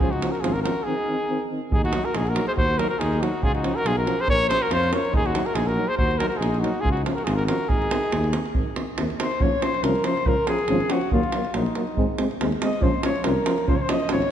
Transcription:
0.00 tuba C#2, euphonium F3 C#4, flugelhorn F4, cornet G#4, davul low
0.10 flugelhorn D#4, cornet F#4, davul high
0.21 euphonium F3 C#4, davul high
0.31 flugelhorn F#4, cornet A#4, davul high
0.40 tuba G#1, euphonium F3, flugelhorn F4, cornet G#4
0.44 euphonium C#4, davul high
0.53 flugelhorn F#4, cornet A#4, davul high
0.62 euphonium F3 C#4, flugelhorn F#4, cornet A#4, davul high
0.84 euphonium D#3 C4, flugelhorn D#4, cornet G#4
1.09 euphonium D#3 C4
1.29 euphonium D#3 C4
1.51 euphonium D#3 C4
1.71 tuba D#2, flugelhorn D#4, cornet G#4, davul low
1.84 flugelhorn D#4, cornet F#4, davul high
1.93 euphonium F#3 D#4, davul high
2.05 flugelhorn F#4, cornet A#4, davul high
2.15 tuba A#1, flugelhorn D#4, cornet G#4, davul high
2.24 flugelhorn F#4, davul high
2.29 cornet A#4
2.36 euphonium F#3 D#4, davul high
2.46 flugelhorn G#4, cornet C5
2.55 tuba D#2, flugelhorn F#4, cornet C5, davul low
2.78 euphonium F#3 D#4, flugelhorn F#4, cornet A#4, davul high
2.90 flugelhorn F#4, cornet A#4, davul high
2.99 tuba D#2, flugelhorn D#4, cornet G#4, davul high
3.13 davul high
3.20 euphonium F#3 D#4, flugelhorn D#4, cornet F#4, davul high
3.42 tuba C#2, flugelhorn F4, cornet G#4, davul low
3.53 flugelhorn D#4, cornet F#4, davul high
3.64 euphonium F3 C#4, davul high
3.76 flugelhorn F#4, cornet A#4, davul high
3.85 tuba B1, flugelhorn F4, cornet G#4, davul high
3.96 flugelhorn F#4, cornet A#4
4.06 euphonium F3 C#4, davul high
4.20 flugelhorn G#4, cornet C5
4.28 tuba A#1, flugelhorn A#4, cornet C#5, davul low
4.41 davul high
4.48 euphonium F3 C#4, flugelhorn G#4, cornet C5, davul high
4.60 flugelhorn F#4, cornet A#4, davul high
4.69 tuba F2, flugelhorn F4, davul high
4.73 cornet C5
4.84 davul high
4.91 euphonium F3 C#4, flugelhorn A#4, cornet C#5, davul high
5.05 davul high
5.11 tuba D#2, flugelhorn D#4, davul low
5.16 cornet G#4
5.24 flugelhorn D#4, cornet F#4, davul high
5.34 euphonium F#3 D#4, davul high
5.44 flugelhorn F#4, cornet A#4, davul high
5.54 tuba A#1, flugelhorn D#4, cornet G#4, davul high
5.67 flugelhorn F#4, cornet A#4, davul high
5.77 euphonium F#3 D#4
5.86 flugelhorn G#4, cornet C5
5.97 tuba D#2, flugelhorn F#4, cornet C5, davul low
6.11 davul high
6.17 euphonium F#3 D#4, flugelhorn F#4, cornet A#4, davul high
6.28 flugelhorn F#4, cornet A#4, davul high
6.37 tuba A#1, flugelhorn D#4, cornet G#4
6.42 davul high
6.55 davul high
6.59 euphonium F#3 D#4, flugelhorn D#4, cornet F#4
6.64 davul high
6.80 tuba C#2, flugelhorn F4, cornet G#4
6.85 davul low
6.91 flugelhorn D#4, cornet F#4
6.97 davul high
7.05 euphonium F3 C#4, davul high
7.15 flugelhorn F#4, cornet A#4, davul high
7.25 tuba G#1, flugelhorn F4, cornet G#4, davul high
7.36 flugelhorn F#4, cornet A#4, davul high
7.46 euphonium F3 C#4, flugelhorn F#4, cornet A#4, davul high
7.69 tuba G#1, flugelhorn D#4, cornet G#4, davul low
7.82 davul high
7.91 euphonium D#3 C4, davul high
8.03 davul high
8.12 tuba D#2, davul high
8.24 davul high
8.33 euphonium D#3 C4, davul high
8.46 davul high
8.55 tuba G#1, euphonium D#3 C4, davul low
8.76 euphonium D#3 C4, davul high
8.97 tuba D#2, euphonium D#3 C4, davul high
9.10 davul high
9.19 euphonium D#3 C4, flugelhorn C5, davul high
9.31 davul high
9.40 tuba A#1, euphonium F3 C#4, flugelhorn C#5, davul low
9.62 euphonium F3 C#4, flugelhorn C5, davul high
9.74 davul high
9.83 tuba C2, euphonium F3 C#4, flugelhorn A#4, davul high
9.95 davul high
10.04 euphonium F3 C#4, flugelhorn C5, davul high
10.17 davul high
10.25 tuba C#2, euphonium F3 C#4, flugelhorn A#4, davul low
10.47 euphonium F3 C#4, flugelhorn G#4, davul high
10.59 davul high
10.68 tuba G#1, euphonium F3 C#4, davul high
10.80 davul high
10.90 euphonium F3 C#4, flugelhorn F#4, davul high
11.01 davul high
11.12 tuba D#2, euphonium F#3 A#3, flugelhorn F4, davul low
11.23 davul high
11.32 euphonium F#3 A#3, davul high
11.45 davul high
11.54 tuba A#1, euphonium F#3 A#3, flugelhorn D#4, davul high
11.66 davul high
11.75 euphonium F#3 A#3, davul high
11.87 davul high
11.97 tuba G#1, euphonium G#3 C4, davul low
12.18 euphonium G#3 C4, davul high
12.31 davul high
12.41 tuba D#2, euphonium G#3 C4, davul high
12.52 davul high
12.61 euphonium G#3 C4, flugelhorn D#5, davul high
12.73 davul high
12.81 tuba A#1, euphonium F3 C#4, flugelhorn C5, davul low
13.03 euphonium F3 C#4, flugelhorn C#5, davul high
13.16 davul high
13.24 tuba C2, euphonium F3 C#4, flugelhorn A#4, davul high
13.46 euphonium F3 C#4, davul high
13.58 davul high
13.68 tuba C#2, euphonium F3 C#4, flugelhorn C5, davul low
13.75 flugelhorn C#5
13.81 flugelhorn C5
13.89 euphonium F3 C#4, flugelhorn D#5, davul high
14.00 davul high
14.09 tuba G#1, euphonium F3 C#4, flugelhorn C#5, davul high
14.22 davul high

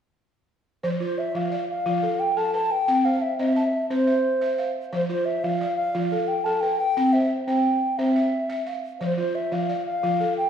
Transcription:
0.83 balafon F3 C5, flute C5
1.00 balafon F4, flute C5
1.18 flute E5
1.35 balafon F3 F4, flute F5
1.52 balafon D5
1.69 flute F5
1.86 balafon F3 F4
2.03 balafon A4
2.20 flute G5
2.37 balafon A4, flute A5
2.54 balafon B4, flute A5
2.71 flute G5
2.88 balafon C4 G5
3.05 balafon C5, flute F5
3.22 flute E5
3.39 balafon C4 C5, flute E5
3.56 balafon A5
3.90 balafon C4 C5, flute C5
4.07 balafon E5
4.41 balafon E5
4.58 balafon F5
4.92 balafon F3 C5, flute C5
5.09 balafon F4, flute C5
5.25 flute E5
5.43 balafon F3 F4, flute F5
5.61 balafon D5
5.77 flute F5
5.95 balafon F3 F4
6.12 balafon A4
6.28 flute G5
6.44 balafon A4, flute A5
6.61 balafon B4, flute G5
6.78 flute G5
6.97 balafon C4 G5
7.13 balafon C5, flute E5
7.46 balafon C4 C5, flute G5
7.98 balafon C4 C5, flute E5
8.16 balafon E5
8.50 balafon E5
8.67 balafon F5
9.00 balafon F3 C5, flute C5
9.17 balafon F4, flute C5
9.35 flute E5
9.52 balafon F3 F4, flute F5
9.69 balafon D5
9.86 flute F5
10.03 balafon F3 F4
10.20 balafon A4
10.38 flute G5

